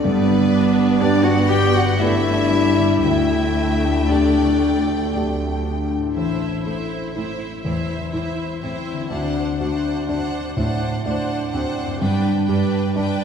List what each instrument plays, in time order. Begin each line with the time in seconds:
Already playing: harp D4 D5, violin section D5
0.05 double bass section G1, grand piano G2, harp G2, cello section G2, viola section G3, clarinet B3, violin section B4
0.29 harp D3
0.52 harp B3, viola section D4
0.77 harp D4
1.01 viola section B3, grand piano B3 D4 G4, clarinet D4, harp G4, violin section D5
1.24 clarinet F#4, harp B4, violin section F#5
1.49 clarinet G4, harp D5, violin section G5
1.74 clarinet F#4, harp B4, violin section F#5
1.99 viola section A3, grand piano B3 D4 G4, clarinet E4, harp G4, violin section E5
2.26 harp D4
2.51 viola section G3, harp B3
2.77 harp D3
3.03 cello section D2, double bass section D2, grand piano D2, harp D3, viola section A3, clarinet E4, violin section E5 G5
3.30 harp A3
3.56 harp D4
3.83 harp G4
4.09 grand piano A3 D4 G4, clarinet D4, harp A4, violin section D5
4.35 harp D5
4.61 harp G5
4.87 harp D5
5.12 grand piano A3 D4 G4, harp A4
5.38 harp G4
5.64 harp D4
5.90 harp A3
5.97 harp A2
6.01 harp C4
6.06 harp E4
6.10 harp A4
6.15 grand piano A1, cello section A2, viola section E4, violin section C5 E5
6.64 cello section A2, viola section E4, grand piano A4, violin section C5 E5
7.14 cello section A2, viola section E4, grand piano E4, violin section C5 E5
7.63 grand piano E2, cello section A2, viola section E4, violin section C5 E5
8.12 cello section A2, viola section E4, grand piano E4, violin section C5 E5
8.61 cello section A2, grand piano C4, viola section E4, violin section C5 E5
8.92 harp D3
8.97 harp C4
9.01 harp D4
9.06 harp F#4
9.10 grand piano D2, cello section D2, viola section D4, violin section C5 F#5
9.59 cello section D2, viola section D4, grand piano F#4, violin section C5 F#5
10.08 cello section D2, viola section D4, grand piano D4, violin section C5 F#5
10.56 cello section D2, grand piano A2, viola section D4, violin section C5 F#5
11.05 cello section D2, viola section D4, grand piano D4, violin section C5 F#5
11.53 cello section D2, grand piano C4, viola section D4, violin section C5 F#5
11.83 harp G2
11.88 harp B3
11.92 harp D4
11.97 viola section D4, harp G4, violin section G5
12.01 cello section G2, grand piano G2, violin section B4
12.47 cello section G2, viola section D4, grand piano G4, violin section B4 G5
12.95 cello section G2, grand piano D4, viola section D4, violin section B4 G5